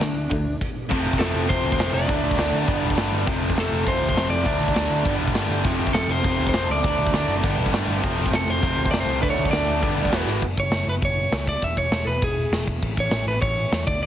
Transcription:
Already playing: lead electric guitar D4
0.00 picked electric bass D2, overdriven electric guitar D3 A3, snare, open hi-hat
0.13 picked electric bass D2
0.30 picked electric bass D2, overdriven electric guitar D3 A3, kick, open hi-hat
0.61 kick, crash
0.89 picked electric bass F1, overdriven electric guitar F2 C3 F3 A3 C4, kick, crash
1.04 picked electric bass F1
1.13 kick
1.19 picked electric bass F1, overdriven electric guitar F2 C3 F3 A3 C4, lead electric guitar A4, snare, crash
1.34 picked electric bass F1
1.48 picked electric bass F1, overdriven electric guitar F2 C3 F3 A3 C4, lead electric guitar C5, kick, crash
1.65 picked electric bass D2
1.72 lead electric guitar C5, kick
1.78 picked electric bass F1, overdriven electric guitar F2 C3 F3 A3 C4, snare, crash
1.93 picked electric bass F1, lead electric guitar D5
2.08 picked electric bass D2, overdriven electric guitar D3 F#3 A3 D4, kick, crash
2.24 picked electric bass D2
2.31 kick
2.36 picked electric bass D2, overdriven electric guitar D3 F#3 A3 D4, snare, crash
2.52 picked electric bass D2
2.65 picked electric bass G1, overdriven electric guitar G2 D3 G3 B3 D4, kick, crash
2.83 picked electric bass E1
2.90 kick
2.94 picked electric bass G1, overdriven electric guitar G2 D3 G3 B3 D4, snare, crash
3.12 picked electric bass G1
3.24 picked electric bass F1, overdriven electric guitar F2 C3 F3 A3 C4, kick, crash
3.42 picked electric bass F1
3.50 kick
3.54 picked electric bass F1, overdriven electric guitar F2 C3 F3 A3 C4, snare, crash
3.61 lead electric guitar A4
3.71 picked electric bass F1
3.84 picked electric bass F1, overdriven electric guitar F2 C3 F3 A3 C4, lead electric guitar C5, kick, crash
4.00 picked electric bass D2
4.09 lead electric guitar C5, kick
4.14 picked electric bass F1, overdriven electric guitar F2 C3 F3 A3 C4, snare, crash
4.30 picked electric bass F1, lead electric guitar D5
4.44 picked electric bass D2, overdriven electric guitar D3 F#3 A3 D4, kick, crash
4.59 picked electric bass D2
4.68 kick
4.72 picked electric bass D2, overdriven electric guitar D3 F#3 A3 D4, snare, crash
4.90 picked electric bass D2
5.03 picked electric bass G1, overdriven electric guitar G2 D3 G3 B3 D4, kick, crash
5.19 picked electric bass E1
5.27 kick
5.33 picked electric bass G1, overdriven electric guitar G2 D3 G3 B3 D4, snare, crash
5.49 picked electric bass G1
5.63 picked electric bass F1, overdriven electric guitar F2 C3 F3 A3 C4, kick, crash
5.78 picked electric bass F1
5.87 kick
5.93 picked electric bass F1, overdriven electric guitar F2 C3 F3 A3 C4, lead electric guitar A4, snare, crash
6.08 picked electric bass F1, lead electric guitar C5
6.23 picked electric bass F1, overdriven electric guitar F2 C3 F3 A3 C4, kick, crash
6.38 picked electric bass D2
6.47 lead electric guitar C5, kick
6.53 picked electric bass F1, overdriven electric guitar F2 C3 F3 A3 C4, snare, crash
6.68 picked electric bass C#2, lead electric guitar D5
6.83 picked electric bass D2, overdriven electric guitar D3 F#3 A3 D4, kick, crash
6.99 picked electric bass D2
7.07 kick
7.13 picked electric bass D2, overdriven electric guitar D3 F#3 A3 D4, snare, crash
7.28 picked electric bass F#1
7.43 picked electric bass G1, overdriven electric guitar G2 D3 G3 B3 D4, kick, crash
7.58 picked electric bass E1
7.66 kick
7.71 picked electric bass G1, overdriven electric guitar G2 D3 G3 B3 D4, snare, crash
7.88 picked electric bass G1
8.01 picked electric bass F1, overdriven electric guitar F2 C3 F3 A3 C4, kick, crash
8.17 picked electric bass F1
8.26 kick
8.30 picked electric bass F1, overdriven electric guitar F2 C3 F3 A3 C4, snare, crash
8.35 lead electric guitar A4
8.47 picked electric bass F1, lead electric guitar C5
8.60 picked electric bass F1, overdriven electric guitar F2 C3 F3 A3 C4, kick, crash
8.77 picked electric bass D2
8.86 kick
8.91 picked electric bass F1, overdriven electric guitar F2 C3 F3 A3 C4, lead electric guitar D5, snare, crash
9.00 lead electric guitar C5
9.07 picked electric bass C2
9.21 picked electric bass D2, overdriven electric guitar D3 F#3 A3 D4, lead electric guitar B4, kick, crash
9.30 lead electric guitar C#5
9.38 picked electric bass D2
9.45 kick
9.51 picked electric bass D2, overdriven electric guitar D3 F#3 A3 D4, lead electric guitar D5, snare, crash
9.68 picked electric bass D2
9.81 picked electric bass G1, overdriven electric guitar G2 D3 G3 B3 D4, kick, crash
9.97 picked electric bass D2
10.05 kick
10.11 picked electric bass E1, overdriven electric guitar E2 B2 E3 G#3 B3 E4, snare, crash
10.27 picked electric bass G#1, snare
10.42 picked electric bass F#1, kick, crash
10.57 picked electric bass F#1, lead electric guitar C#5, kick
10.71 picked electric bass F#1, snare, crash
10.87 picked electric bass F#1, lead electric guitar B4
11.02 picked electric bass F#1, lead electric guitar C#5, kick, crash
11.32 picked electric bass C#2, snare, crash
11.47 lead electric guitar D5, kick
11.62 picked electric bass E1, lead electric guitar E5, kick, crash
11.77 picked electric bass E1, lead electric guitar C#5, kick
11.91 picked electric bass E1, snare, crash
12.05 picked electric bass E1, lead electric guitar A4 B4
12.22 picked electric bass E1, lead electric guitar G#4, kick, crash
12.51 picked electric bass E1, snare, crash
12.67 picked electric bass E1, kick
12.83 picked electric bass A1, kick, crash
12.97 picked electric bass A1, lead electric guitar C#5, kick
13.11 picked electric bass A1, snare, crash
13.26 picked electric bass A1, lead electric guitar B4
13.41 picked electric bass A1, lead electric guitar C#5, kick, crash
13.72 picked electric bass E2, snare, crash
13.87 picked electric bass D2, lead electric guitar D5, kick
14.02 picked electric bass D2, lead electric guitar D5, crash

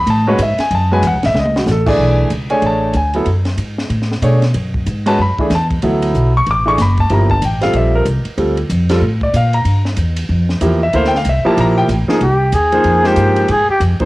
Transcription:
0.07 upright bass A2, grand piano A5, ride
0.27 grand piano G#3 C#4 F#4 B4 C#5
0.39 upright bass G#2, grand piano E5, hi-hat pedal, ride
0.58 grand piano G#5, muted upright bass stroke, snare, ride
0.71 upright bass F#2, ride
0.75 grand piano A5
0.91 grand piano G#3 C#4 F#4 B4 G#5
1.02 upright bass E2, hi-hat pedal, ride
1.07 grand piano F#5
1.13 upright bass C#2
1.23 upright bass A1, grand piano E5, snare, ride
1.34 upright bass C#2, snare
1.39 grand piano D#5
1.46 high tom
1.56 grand piano F#4, snare
1.66 upright bass A1, snare, hi-hat pedal
1.71 grand piano A4
1.86 grand piano E3 A3 D4 G#4 D5, kick, crash
1.98 upright bass B1
2.30 upright bass C#2, hi-hat pedal, ride
2.50 grand piano A3 D4 G#4 C#5 G#5, ride
2.62 upright bass A1, ride
2.67 grand piano A5
2.93 upright bass D2, grand piano G#5, hi-hat pedal, ride
3.13 grand piano F#3 B3 E4 A4, ride
3.26 upright bass F#2, ride
3.45 snare, ride
3.57 upright bass G#2, hi-hat pedal, ride
3.78 snare
3.90 upright bass A2, ride
4.02 snare
4.11 snare
4.22 upright bass B2, grand piano A3 D4 G#4 C#5, hi-hat pedal, ride
4.42 snare, ride
4.54 upright bass F#2, ride
4.74 kick
4.86 upright bass G#2, hi-hat pedal, ride
5.06 grand piano G#3 C#4 F#4 B4 A5, ride
5.19 upright bass F#2, grand piano B5
5.38 grand piano E3 A3 D4 G#4, muted upright bass stroke, kick
5.50 upright bass E2, snare, hi-hat pedal, ride
5.55 grand piano A5
5.70 kick, ride
5.82 upright bass D2, grand piano F#3 B3 E4 A4, ride
6.02 ride
6.14 upright bass B1, hi-hat pedal
6.37 grand piano C#6
6.46 upright bass A1, ride
6.51 grand piano D6
6.66 grand piano E3 A3 D4 G#4 C#6
6.78 upright bass F#1, grand piano B5, snare, hi-hat pedal, ride
6.97 grand piano A5, kick, ride
7.10 upright bass G1, grand piano F3 A#3 E4 G4, ride
7.14 grand piano A#5
7.30 grand piano A5, kick
7.42 upright bass A1, grand piano G5, hi-hat pedal, ride
7.61 grand piano G3 C4 F4 A4 F5, snare, ride
7.73 upright bass A#1, grand piano E5, ride
7.95 grand piano A#4
8.05 upright bass C2, hi-hat pedal, ride
8.25 muted upright bass stroke, ride
8.37 upright bass D2, grand piano G3 C4 F4 A4, ride
8.57 ride
8.69 upright bass F2, hi-hat pedal, ride
8.89 grand piano G3 C4 F4 A4, snare, ride
9.01 upright bass A2
9.21 grand piano D5, kick
9.34 upright bass A#2, grand piano F5, hi-hat pedal, ride
9.53 grand piano A#5, ride
9.65 upright bass G2, ride
9.85 snare
9.97 upright bass E2, hi-hat pedal, ride
10.17 ride
10.29 upright bass F2
10.49 snare
10.61 upright bass E2, grand piano F3 A#3 E4 G4, hi-hat pedal, ride
10.83 grand piano E5
10.93 upright bass D2, grand piano A#3 E4 A4 C5 F5, ride
11.04 grand piano G5, snare
11.15 grand piano F5, snare
11.25 upright bass C2, hi-hat pedal, ride
11.29 grand piano E5
11.45 grand piano F3 A#3 E4 G4 A5, muted upright bass stroke
11.57 upright bass A#1, grand piano A#5, ride
11.78 grand piano G5
11.88 upright bass A1, hi-hat pedal, ride
12.08 grand piano F3 A#3 D#4 G#4, muted upright bass stroke, snare
12.21 upright bass C2, trumpet G4, ride
12.52 upright bass D#2, trumpet G#4, hi-hat pedal, ride
12.72 grand piano F3 A#3 D#4 G#4 C5, ride
12.84 upright bass F2, ride
13.04 grand piano F3 G#3 A#3 D#4 C5, trumpet G4, snare
13.16 upright bass G2, hi-hat pedal, ride
13.36 ride
13.48 upright bass G#2, trumpet G#4, ride
13.69 trumpet G4, muted upright bass stroke
13.80 upright bass F2, hi-hat pedal, ride
14.00 grand piano F3 A#3 D#4 G#4 C5, muted upright bass stroke, kick, ride

